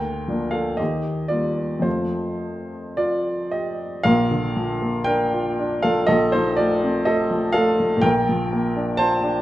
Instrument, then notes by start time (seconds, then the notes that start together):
upright piano
Already playing: D2 A#4 G5
0.28 F3 A#3 D4
0.51 A4 F5
0.77 D#2 G4 D#5
1.28 G3 A#3 F4 D5
1.79 F2 F3 A3 C5
1.84 F4
2.97 F4 D5
3.51 G4 D#5
4.03 A#1 A#2 A#4 F5
4.31 D3
4.56 F3
4.82 A#3
5.04 D4 A#4 G5
5.34 F4
5.59 D4
5.83 F3 A4 F5
6.07 A#1 A#2 A4 D#5
6.32 F3 D#4 C5
6.57 A3 F4 D5
6.84 C4
7.05 A3 A4 D#5
7.31 F3
7.52 A3 A4 F5
7.80 F3
7.97 A#2
8.01 A#1 A#4 G5
8.29 F3
8.53 A#3
8.76 D4
8.97 F4 C5 A5
9.23 D4